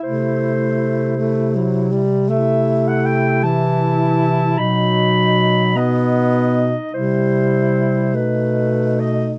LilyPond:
<<
  \new Staff \with { instrumentName = "Clarinet" } { \time 6/8 \key b \phrygian \tempo 4. = 52 c''2~ c''8 r8 | e''8. fis''16 g''8 a''4. | b''4. dis''4. | c''4. b'4 dis''8 | }
  \new Staff \with { instrumentName = "Alto saxophone" } { \time 6/8 \key b \phrygian e'2~ e'8 r8 | e'4. e'4. | dis'4. dis'4. | e'4. dis'4. | }
  \new Staff \with { instrumentName = "Tenor saxophone" } { \clef bass \time 6/8 \key b \phrygian a4. a8 fis8 g8 | a4. e4. | fis4. b4. | g4. a4. | }
  \new Staff \with { instrumentName = "Bass clarinet" } { \clef bass \time 6/8 \key b \phrygian c2.~ | c2. | b,2. | c4. b,4. | }
>>